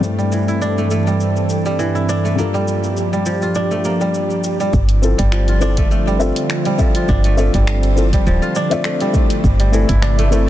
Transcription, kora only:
0.00 0.78 A3 medium
0.00 0.61 D4 medium
0.00 0.38 F4 medium
0.18 1.06 G3 medium
0.32 1.78 E3 medium
0.48 1.95 E4 medium
0.62 2.09 D4 medium
0.78 0.91 A3 medium
0.91 2.24 A3 medium
1.07 1.64 G3 medium
1.66 2.43 G3 medium
1.79 2.43 E3 medium
1.95 3.32 E4 medium
2.09 3.55 D4 medium
2.25 2.44 A3 medium
2.38 3.77 A#3 medium
2.54 3.12 G3 medium
3.13 4.00 G3 medium
3.26 4.78 F3 medium
3.43 4.94 F4 medium
3.56 5.24 D4 medium
3.71 3.91 A3 medium
3.85 5.78 A#3 medium
4.01 4.59 G3 medium
4.60 4.78 G3 medium
5.18 6.06 G3 medium
5.32 6.78 F3 medium
5.48 6.95 F4 medium
5.62 7.08 D4 loud
5.78 5.91 A3 medium
5.91 7.25 A3 medium
6.07 6.65 G3 medium
6.66 7.53 G3 medium
6.79 8.25 F3 medium
6.95 8.42 F4 medium
7.09 8.56 D4 loud
7.25 7.38 A3 medium
7.38 8.72 A3 medium
7.55 8.12 G3 medium
8.14 9.00 G3 medium
8.27 9.49 F3 medium
8.42 9.79 F4 medium
8.56 10.02 D4 loud
8.72 8.85 A3 medium
8.85 10.18 A3 medium
9.01 9.49 G3 medium
9.60 10.47 G3 medium
9.73 10.49 E3 medium
9.89 10.49 E4 medium
10.02 10.49 D4 loud
10.18 10.31 A3 medium
10.32 10.49 A3 medium

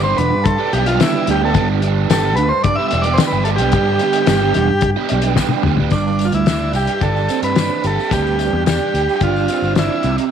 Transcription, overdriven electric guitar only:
0.00 1.00 G2 medium
0.00 0.32 D3 loud
0.05 0.18 G3 medium
0.05 0.18 B3 medium
0.05 0.19 D4 medium
0.05 0.19 G4 medium
0.18 muted overdriven electric guitar stroke soft
0.59 0.72 G3 medium
0.59 0.73 B3 medium
0.59 0.74 D4 medium
0.59 0.74 G4 medium
0.73 0.88 G3 medium
0.73 0.88 B3 medium
0.73 0.87 D4 medium
0.73 0.86 G4 medium
0.86 1.00 G3 medium
0.86 1.01 B3 medium
0.86 1.01 D4 medium
0.86 1.01 G4 medium
1.00 1.54 G2 medium
1.00 1.41 D3 medium
1.00 1.16 G3 medium
1.00 1.15 B3 medium
1.00 1.15 D4 loud
1.00 1.14 G4 medium
1.14 1.27 G3 medium
1.14 1.28 B3 medium
1.14 1.29 D4 medium
1.14 1.29 G4 medium
1.28 1.43 G3 medium
1.28 1.43 B3 medium
1.28 1.42 D4 medium
1.28 1.41 G4 medium
1.42 1.54 G3 medium
1.42 1.55 B3 medium
1.42 1.55 D4 medium
1.42 1.56 G4 medium
1.54 2.09 G2 loud
1.54 2.08 D3 medium
1.54 1.82 G3 medium
1.54 1.82 B3 loud
1.54 1.83 D4 loud
1.54 1.83 G4 loud
1.82 2.10 G3 medium
1.82 2.10 B3 medium
1.82 2.10 D4 medium
1.82 2.11 G4 medium
2.09 3.19 G2 medium
2.09 2.51 D3 medium
2.09 2.25 G3 medium
2.09 2.25 B3 loud
2.09 2.24 D4 loud
2.09 2.23 G4 loud
2.23 2.38 G3 medium
2.23 2.38 B3 medium
2.23 2.38 D4 medium
2.23 2.39 G4 medium
2.39 muted overdriven electric guitar stroke medium
2.78 2.92 G3 medium
2.78 2.92 B3 medium
2.78 2.93 D4 medium
2.78 2.94 G4 medium
2.92 3.08 G3 medium
2.92 3.07 B3 medium
2.92 3.06 D4 medium
2.92 3.06 G4 medium
3.06 3.19 G3 medium
3.06 3.19 B3 medium
3.06 3.20 D4 medium
3.06 3.20 G4 medium
3.19 3.73 G2 medium
3.19 3.60 D3 medium
3.19 3.34 G3 medium
3.19 3.33 B3 medium
3.19 3.33 D4 medium
3.19 3.32 G4 medium
3.33 3.46 G3 medium
3.33 3.46 B3 medium
3.33 3.47 D4 medium
3.33 3.48 G4 medium
3.46 3.61 G3 medium
3.46 3.60 B3 medium
3.46 3.60 D4 medium
3.46 3.58 G4 medium
3.60 3.73 G3 medium
3.60 3.74 B3 medium
3.60 3.74 D4 medium
3.60 3.74 G4 medium
3.73 4.28 G2 medium
3.73 4.28 D3 medium
3.73 4.00 G3 loud
3.73 4.01 B3 loud
3.73 4.02 D4 loud
3.73 4.02 G4 loud
4.01 4.29 G3 medium
4.01 4.29 B3 medium
4.01 4.29 D4 medium
4.01 4.30 G4 medium
4.29 4.70 G2 medium
4.29 4.70 D3 medium
4.29 4.43 G3 medium
4.29 4.43 B3 loud
4.29 4.42 D4 loud
4.29 4.41 G4 loud
4.42 4.55 G3 medium
4.42 4.55 B3 medium
4.42 4.56 D4 medium
4.42 4.56 G4 medium
4.56 muted overdriven electric guitar stroke soft
4.97 5.10 G3 medium
4.97 5.11 B3 medium
4.97 5.11 D4 medium
4.97 5.12 G4 medium
5.11 5.25 G3 medium
5.11 5.25 B3 medium
5.11 5.24 D4 medium
5.11 5.23 G4 medium
5.24 5.37 G3 medium
5.24 5.37 B3 medium
5.24 5.38 D4 medium
5.24 5.38 G4 medium
5.37 5.78 G2 medium
5.37 5.79 D3 medium
5.37 5.52 G3 medium
5.37 5.52 B3 medium
5.37 5.51 D4 loud
5.37 5.50 G4 medium
5.51 5.65 G3 medium
5.51 5.65 B3 medium
5.51 5.66 D4 medium
5.51 5.66 G4 medium
5.66 5.80 G3 medium
5.66 5.79 B3 medium
5.66 5.79 D4 medium
5.66 5.78 G4 medium
5.79 5.92 G3 medium
5.79 5.92 B3 medium
5.79 5.91 D4 medium
5.79 5.91 G4 medium
5.93 7.30 G2 medium
6.48 7.01 D4 medium
6.75 7.84 G4 medium
7.03 7.55 D4 medium
7.30 8.70 C4 medium
7.56 8.65 D4 medium
7.84 8.94 G4 medium
8.12 9.49 G2 medium
8.67 9.21 D4 medium
8.94 10.31 G4 medium
9.23 9.76 D4 medium
9.50 10.31 C4 medium
9.77 10.05 D4 medium
10.04 10.30 C3 medium

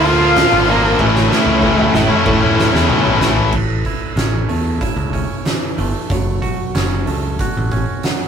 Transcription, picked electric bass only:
0.00 0.43 D2 loud
0.52 0.94 G#1 medium
1.00 1.28 A1 loud
1.46 1.89 C#2 medium
1.94 2.08 A1 medium
2.27 2.69 A2 loud
2.73 2.88 E2 medium
2.89 3.18 B1 medium
3.21 3.50 A1 medium
3.53 3.82 A1 medium
4.16 4.45 A1 medium
4.49 4.78 E2 medium
4.96 5.26 C#2 medium
5.78 5.92 G1 medium
6.10 6.39 F#1 medium
6.75 7.03 F#1 medium
7.08 7.36 C#2 medium
7.57 7.85 A1 medium

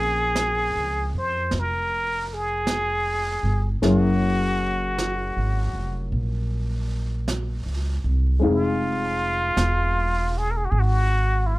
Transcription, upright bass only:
0.00 0.71 A#1 medium
0.76 1.11 C#2 soft
1.14 1.50 F2 soft
1.53 3.40 F1 medium
3.43 3.80 G1 soft
3.83 5.32 F#1 medium
5.37 5.72 G#1 soft
5.73 6.09 F1 soft
6.12 7.61 A#1 medium
7.66 8.01 C#2 soft
8.04 8.40 C2 medium
8.42 9.53 F1 medium
9.57 10.67 E1 medium
10.72 11.59 G#1 medium

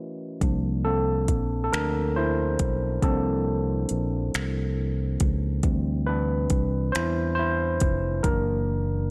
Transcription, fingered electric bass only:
0.42 1.29 C2 medium
1.29 1.68 A#1 medium
1.73 2.56 D2 medium
2.60 2.99 B1 medium
3.03 3.86 C2 medium
3.91 4.30 A#1 medium
4.35 5.17 C2 medium
5.21 5.60 C#2 medium
5.64 6.47 D2 loud
6.51 6.90 C2 medium
6.95 7.78 E2 medium
7.82 8.21 F1 medium
8.25 9.07 F#1 medium

